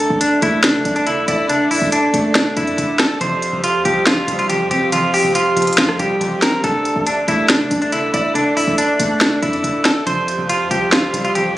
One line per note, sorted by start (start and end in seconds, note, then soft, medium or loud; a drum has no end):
0.00 0.63 D3 loud
0.00 0.18 A4 loud
0.00 3.17 A4 medium
0.00 3.17 D5 medium
0.00 3.17 E5 medium
0.00 3.17 D6 medium
0.10 0.41 D2 loud
0.21 0.39 D4 medium
0.21 closed hi-hat medium
0.42 0.76 D2 loud
0.42 1.49 A3 medium
0.42 0.60 E4 medium
0.42 closed hi-hat medium
0.64 1.06 D3 medium
0.64 0.94 D4 medium
0.64 snare loud
0.64 closed hi-hat medium
0.74 0.85 D3 loud
0.85 1.19 D2 loud
0.85 1.93 D4 medium
0.85 closed hi-hat medium
0.96 1.05 D4 medium
0.96 closed hi-hat soft
1.07 1.47 D3 medium
1.07 1.25 E4 medium
1.07 closed hi-hat medium
1.17 1.28 C2 loud
1.28 1.72 D2 loud
1.28 1.46 E4 medium
1.28 2.35 D5 medium
1.28 closed hi-hat medium
1.48 2.34 D3 loud
1.48 1.67 D4 medium
1.48 closed hi-hat medium
1.71 1.81 A2 loud
1.71 1.89 E4 medium
1.71 open hi-hat medium
1.82 2.12 D2 loud
1.92 2.33 D4 medium
1.92 closed hi-hat medium
2.14 2.55 D2 loud
2.14 3.21 A3 medium
2.14 closed hi-hat medium
2.35 2.75 D3 medium
2.35 2.53 D4 medium
2.35 snare loud
2.35 closed hi-hat medium
2.57 2.77 F2 loud
2.57 3.21 D4 medium
2.57 2.97 E4 medium
2.57 closed hi-hat medium
2.67 closed hi-hat soft
2.77 3.19 D2 loud
2.77 3.20 D3 medium
2.77 closed hi-hat medium
2.99 3.17 A4 medium
2.99 3.21 D5 medium
2.99 snare loud
2.99 closed hi-hat medium
3.21 3.52 F1 loud
3.21 4.05 F2 loud
3.21 6.60 G4 medium
3.21 6.60 C5 medium
3.21 3.61 C5 loud
3.21 6.60 F5 medium
3.21 6.60 C6 medium
3.21 closed hi-hat medium
3.42 closed hi-hat medium
3.53 3.76 F1 loud
3.64 3.82 F4 medium
3.64 closed hi-hat medium
3.75 3.85 F2 loud
3.85 4.26 C2 loud
3.85 4.92 F3 medium
3.85 4.03 G4 medium
3.85 closed hi-hat medium
4.07 4.48 F2 loud
4.07 4.37 F4 medium
4.07 snare loud
4.07 closed hi-hat medium
4.27 4.62 F1 loud
4.27 5.35 G3 medium
4.27 closed hi-hat medium
4.39 4.48 F4 medium
4.39 closed hi-hat soft
4.49 4.91 F2 medium
4.49 4.67 G4 medium
4.49 closed hi-hat medium
4.60 4.70 F2 loud
4.71 5.22 F1 loud
4.71 5.78 C4 medium
4.71 4.89 G4 medium
4.71 closed hi-hat medium
4.92 5.77 F2 loud
4.92 5.10 F4 medium
4.92 closed hi-hat medium
5.14 5.32 G4 medium
5.14 open hi-hat medium
5.25 5.55 F1 loud
5.35 5.76 F4 medium
5.35 closed hi-hat medium
5.57 5.80 F1 loud
5.57 6.64 F3 medium
5.57 closed hi-hat medium
5.62 closed hi-hat medium
5.67 closed hi-hat medium
5.73 closed hi-hat medium
5.78 6.20 F2 medium
5.78 5.90 F2 loud
5.78 5.96 F4 medium
5.78 snare loud
5.78 closed hi-hat medium
5.89 5.99 F1 loud
5.89 cross-stick loud
5.99 6.20 F1 loud
5.99 6.64 G3 medium
5.99 6.40 G4 medium
5.99 closed hi-hat medium
6.21 6.62 F1 loud
6.21 6.64 F2 medium
6.21 closed hi-hat medium
6.42 6.64 C4 medium
6.42 6.60 A#4 medium
6.42 snare loud
6.42 closed hi-hat medium
6.64 6.95 D2 loud
6.64 7.48 D3 loud
6.64 10.03 A4 medium
6.64 7.04 A4 loud
6.64 10.03 D5 medium
6.64 10.03 E5 medium
6.64 10.03 D6 medium
6.64 closed hi-hat medium
6.85 closed hi-hat medium
6.96 7.27 D2 loud
7.07 7.24 D4 medium
7.07 closed hi-hat medium
7.27 7.62 D2 loud
7.27 8.35 A3 medium
7.27 7.46 E4 medium
7.27 closed hi-hat medium
7.50 7.91 D3 medium
7.50 7.80 D4 medium
7.50 snare loud
7.50 closed hi-hat medium
7.60 7.70 D3 loud
7.71 8.05 D2 loud
7.71 8.78 D4 medium
7.71 closed hi-hat medium
7.82 7.91 D4 medium
7.82 closed hi-hat soft
7.92 8.32 D3 medium
7.92 8.10 E4 medium
7.92 closed hi-hat medium
8.03 8.13 C2 loud
8.14 8.58 D2 loud
8.14 8.32 E4 medium
8.14 9.21 D5 medium
8.14 closed hi-hat medium
8.34 9.20 D3 loud
8.34 8.53 D4 medium
8.34 closed hi-hat medium
8.57 8.67 A2 loud
8.57 8.75 E4 medium
8.57 open hi-hat medium
8.67 8.98 D2 loud
8.78 9.18 D4 medium
8.78 closed hi-hat medium
8.99 9.41 D2 loud
8.99 10.07 A3 medium
8.99 closed hi-hat medium
9.21 9.61 D3 medium
9.21 9.39 D4 medium
9.21 snare loud
9.21 closed hi-hat medium
9.42 9.63 F2 loud
9.42 10.07 D4 medium
9.42 9.83 E4 medium
9.42 closed hi-hat medium
9.53 closed hi-hat soft
9.63 10.05 D2 loud
9.63 10.06 D3 medium
9.63 closed hi-hat medium
9.85 10.03 A4 medium
9.85 10.06 D5 medium
9.85 snare loud
9.85 closed hi-hat medium
10.06 10.38 F1 loud
10.06 10.91 F2 loud
10.06 11.58 G4 medium
10.06 10.47 C5 loud
10.06 11.58 C5 medium
10.06 11.58 F5 medium
10.06 11.58 C6 loud
10.06 closed hi-hat medium
10.28 closed hi-hat medium
10.39 10.62 F1 loud
10.49 10.67 F4 medium
10.49 closed hi-hat medium
10.60 10.70 F2 loud
10.71 11.12 C2 loud
10.71 11.58 F3 medium
10.71 10.89 G4 medium
10.71 closed hi-hat medium
10.92 11.33 F2 medium
10.92 11.23 F4 medium
10.92 snare loud
10.92 closed hi-hat medium
11.13 11.47 F1 loud
11.13 11.58 G3 medium
11.13 closed hi-hat medium
11.25 11.33 F4 medium
11.25 closed hi-hat soft
11.35 11.58 F2 medium
11.35 11.53 G4 medium
11.35 closed hi-hat medium
11.46 11.56 F2 loud